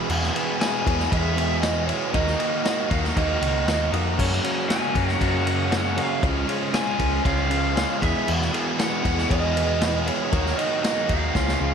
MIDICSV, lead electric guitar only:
0, 0, Header, 1, 2, 480
1, 0, Start_track
1, 0, Tempo, 511509
1, 95, Time_signature, 4, 2, 24, 8
1, 11018, End_track
2, 0, Start_track
2, 0, Title_t, "Lead electric guitar"
2, 0, Program_c, 0, 29
2, 575, Note_on_c, 0, 80, 113
2, 1043, Note_on_c, 0, 76, 105
2, 1068, Note_off_c, 0, 80, 0
2, 1493, Note_off_c, 0, 76, 0
2, 1516, Note_on_c, 0, 75, 93
2, 1742, Note_off_c, 0, 75, 0
2, 1746, Note_on_c, 0, 73, 99
2, 1980, Note_off_c, 0, 73, 0
2, 1996, Note_on_c, 0, 75, 104
2, 2720, Note_on_c, 0, 77, 85
2, 2744, Note_off_c, 0, 75, 0
2, 2786, Note_off_c, 0, 77, 0
2, 2963, Note_on_c, 0, 75, 91
2, 3648, Note_off_c, 0, 75, 0
2, 4402, Note_on_c, 0, 80, 108
2, 4883, Note_off_c, 0, 80, 0
2, 4887, Note_on_c, 0, 78, 101
2, 5594, Note_off_c, 0, 78, 0
2, 5598, Note_on_c, 0, 77, 80
2, 5826, Note_off_c, 0, 77, 0
2, 6331, Note_on_c, 0, 80, 116
2, 6804, Note_off_c, 0, 80, 0
2, 6808, Note_on_c, 0, 77, 110
2, 7544, Note_on_c, 0, 76, 79
2, 7550, Note_off_c, 0, 77, 0
2, 7760, Note_off_c, 0, 76, 0
2, 8256, Note_on_c, 0, 78, 109
2, 8700, Note_off_c, 0, 78, 0
2, 8737, Note_on_c, 0, 75, 117
2, 9452, Note_off_c, 0, 75, 0
2, 9456, Note_on_c, 0, 73, 97
2, 9925, Note_off_c, 0, 73, 0
2, 9928, Note_on_c, 0, 75, 94
2, 10145, Note_off_c, 0, 75, 0
2, 10157, Note_on_c, 0, 75, 98
2, 10412, Note_on_c, 0, 77, 86
2, 10413, Note_off_c, 0, 75, 0
2, 11018, Note_off_c, 0, 77, 0
2, 11018, End_track
0, 0, End_of_file